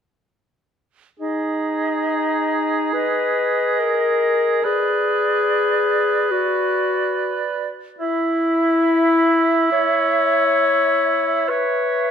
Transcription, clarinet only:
1.19 D#4
2.94 B4
3.80 A#4
4.65 G#4
6.31 F#4
7.99 E4
9.72 C#5
11.48 B4

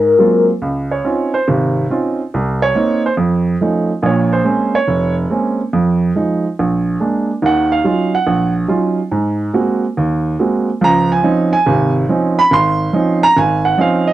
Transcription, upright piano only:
Already playing: G#2
0.19 F#3 G#3 A#3 C4 F4
0.62 C#2
0.91 C#5
1.05 C4 C#4 D#4 F4
1.34 C5
1.47 G#1 C3
1.90 C4 C#4 D#4 F4
2.34 C2
2.62 C#5
2.75 A#3 C4 D#4
3.06 C5
3.17 F2
3.61 F3 A3 C#4 D#4
4.02 A#1 A#2 C#5
4.33 C5
4.44 G#3 A#3 C4 C#4
4.75 C#5
4.88 F1
5.30 G#3 A#3 C4 C#4
5.73 F2
6.15 F3 G#3 D#4
6.59 A#1
7.00 G#3 A#3 D4
7.42 D#2 D#3 F#5
7.72 F5
7.84 F#3 C#4 D#4 F4
8.15 F#5
8.27 A#1
8.68 F#3 C#4 D#4 F4
9.11 G#2
9.53 G#3 A#3 C4 F#4
9.97 D#2
10.39 G#3 A#3 C4 F#4
10.81 C#2 F3 A#5
11.12 G#5
11.23 F3 C4 C#4 D#4
11.53 G#5
11.66 G#1 C3
12.09 F3 C4 C#4 D#4
12.39 B5
12.51 G#1 C6
12.93 F3 C4 C#4 D#4
13.23 A#5
13.37 G#1 G#5
13.65 F#5
13.78 F3 C4 C#4 D#4 F5
14.07 D#5

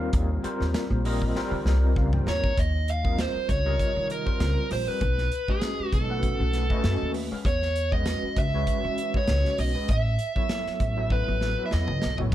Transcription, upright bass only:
0.13 D#2
0.44 muted upright bass stroke
0.60 D#2
0.90 A#1
1.35 muted upright bass stroke
1.51 D#3
1.65 C2
1.96 C#2
2.26 D#2
2.58 D#2
3.35 muted upright bass stroke
3.49 C#2
3.96 D#3
4.40 C#2
4.71 A#1
4.88 muted upright bass stroke
5.01 B1
5.79 muted upright bass stroke
5.93 B1
6.40 B1
6.84 F#2
7.02 D#2
7.31 muted upright bass stroke
7.45 E2
8.23 muted upright bass stroke
8.36 C#2
8.84 E3
9.28 C#2
9.58 B1
9.76 muted upright bass stroke
9.89 A1
10.67 muted upright bass stroke
10.80 A1
11.28 A1
11.73 E2
11.90 C#2
12.04 B1
12.20 A1

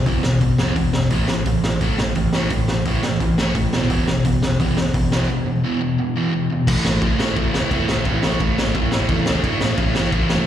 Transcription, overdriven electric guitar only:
0.06 E2 B2 E3
0.24 E2 B2
0.42 E2 B2
0.59 E2 B2 E3
0.76 E2 B2
0.93 E2 B2
1.12 A2 E3 A3
1.28 A2 E3
1.47 A2 E3
1.64 A2 E3
1.81 A2 E3 A3
1.99 A2 E3
2.16 A2 E3
2.35 A2 E3 A3
2.52 A2 E3
2.70 A2 E3
2.88 A2 E3 A3
3.04 A2 E3
3.22 A2 E3
3.40 A2 E3 A3
3.56 A2 E3
3.74 E2 B2 E3
3.91 E2 B2 E3
4.08 E2 B2
4.25 E2 B2
4.43 E2 B2
4.60 E2 B2 E3
4.77 E2 B2
4.94 E2 B2
5.12 E2 B2 E3
5.30 E2 B2
5.46 E2 B2
5.64 E2 B2 E3
5.81 E2 B2
5.99 E2 B2
6.17 E2 B2 E3
6.33 E2 B2
6.51 E2 B2
6.69 A2 E3 A3
6.85 A2 E3 A3
7.02 A2 E3 A3
7.20 A2 E3 A3
7.38 A2 E3 A3
7.55 A2 E3 A3
7.73 A2 E3 A3
7.91 A2 E3 A3
8.08 A2 E3 A3
8.24 A2 E3 A3
8.41 A2 E3 A3
8.58 A2 E3 A3
8.76 A2 E3 A3
8.92 A2 E3 A3
9.09 A2 E3 A3
9.27 D3 A3 D4
9.44 A2 E3 A3
9.62 A2 E3 A3
9.78 A2 E3 A3
9.95 A2 E3 A3
10.13 A2 E3 A3
10.31 A2 E3 A3

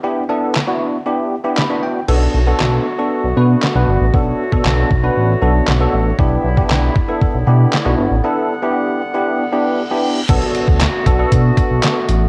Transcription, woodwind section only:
2.09 D3 A3 B3 F#4
4.14 C#5
6.19 D3 G3 B3 E4
8.24 F#5
10.29 D3 A3 B3 F#4

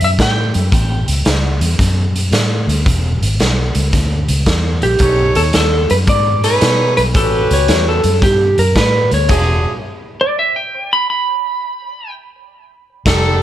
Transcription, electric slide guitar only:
0.04 E5
0.22 G5
4.83 G4
5.36 A4
5.55 A4
5.91 B4
6.09 D5
6.44 B4
6.97 B4
7.16 A4
7.54 C#5
7.89 A4
8.23 G4
8.59 A#4
8.77 B4
9.14 C#5
10.21 D5
10.39 E5
10.56 G5
10.93 B5
11.10 B5

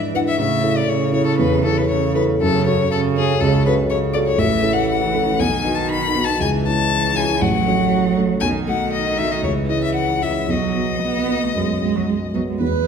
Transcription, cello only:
Already playing: E3
0.38 C#3
0.89 C#3
1.90 C#3
2.42 C#3
2.92 C#3
3.41 C#3
3.92 C#3
4.40 E3
5.39 D#3
6.40 E3
7.41 F#3
8.43 D#3
9.44 E3
10.48 F#3
11.03 B3
11.43 A3
11.56 G#3
11.83 G#3
11.95 F#3
12.08 G#3
12.35 F#3
12.49 G#3
12.61 B4

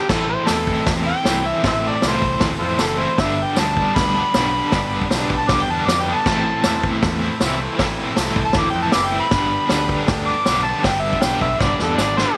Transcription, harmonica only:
0.09 A4
0.29 C5
0.47 A4
1.07 G5
1.47 E5
1.66 A4 C5 E5
1.88 D5
2.08 F4 A4 C5
2.60 F4 A4 C5
2.82 A4
2.99 C5
3.20 E5
3.43 G5
3.59 A5
3.96 B5
5.36 A5
5.49 D6
5.63 G5
5.71 A5
5.87 D6
6.01 G5
6.14 A5
8.45 A5
8.59 D6
8.70 G5
8.82 A5
8.93 D6
9.07 G5
9.20 B5
10.26 D6
10.64 A5
10.84 G5
11.01 E5
11.22 G5
11.41 E5
11.60 D5
11.83 A4
11.97 D5
12.17 C5

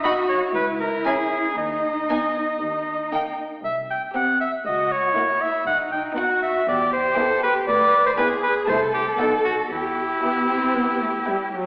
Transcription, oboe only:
0.03 D#5
0.29 C#5
0.55 B4
0.80 A#4
1.05 G#4
1.58 D#5
3.64 E5
3.90 G5
4.15 F#5
4.40 E5
4.66 D#5
4.91 C#5
5.41 E5
5.67 F#5
5.92 G5
6.17 F#5
6.42 E5
6.68 D5
6.93 C5
7.43 B4
7.68 D5
8.06 C5
8.17 B4
8.43 B4
8.69 C5
8.94 G4
9.19 A4
9.44 F#4
9.72 E4

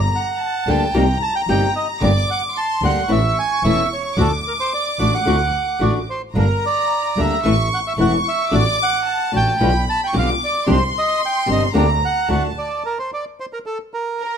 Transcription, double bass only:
0.67 D2
0.93 C2
1.48 G1
2.02 G1
2.82 D2
3.09 A1
3.63 E1
4.17 D2
4.99 A1
5.26 D2
5.81 A1
6.35 G1
7.17 D2
7.43 A1
7.98 E1
8.53 A1
9.34 A1
9.60 B1
10.14 B1
10.68 C2
11.49 G1
11.75 D2
12.29 D2

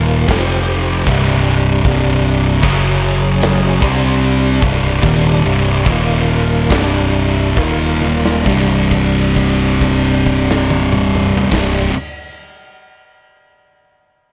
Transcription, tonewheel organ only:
Already playing: D#3 A#3 F4
0.28 F3 C4 G4
1.05 C3 G3 D4
2.63 F#3 C#4 G#4
3.83 C3 G3 D4
5.87 D#3 A#3 F4
6.72 C3 G3 D4
7.58 D#3 A#3 F4
8.46 C3 G3 D4
11.53 C3 G3 D4

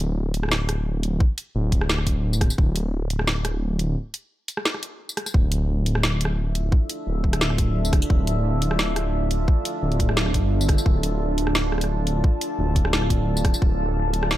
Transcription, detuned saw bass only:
Already playing: D1
1.55 D1
2.07 D1
2.58 D1
5.34 D1
7.07 D1
7.58 D1
8.10 D1
9.82 D1
10.34 G1
10.86 D1
12.59 D1
13.10 D1
13.62 D1

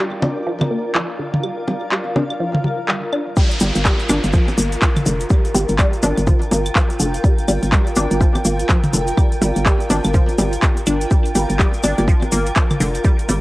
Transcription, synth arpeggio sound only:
0.22 D4
0.46 F3
0.71 A#3
0.95 F3
1.19 D3
1.43 G3
1.68 G3
1.92 G3
2.16 D4
2.40 F3
2.64 G3
2.88 G3
3.13 D4
3.37 G3
3.61 G3
3.85 G3
4.09 D4
4.34 F3
4.58 A#3
4.82 F3
5.06 D3
5.30 G3
5.55 G3
5.79 G3
6.03 D4
6.27 F3
6.51 A#3
6.75 F3
7.00 D3
7.24 G3
7.48 G3
7.72 G3
7.96 D4
8.21 F3
8.45 A#3
8.69 F3
8.93 D3
9.18 G3
9.42 G3
9.66 G3
9.90 D4
10.14 F3
10.38 G3
10.63 G3
10.87 D4
11.11 G3
11.35 G3
11.59 G3
11.84 D4
12.08 F3
12.32 A#3
12.56 F3
12.80 D3
13.05 G3
13.29 G3

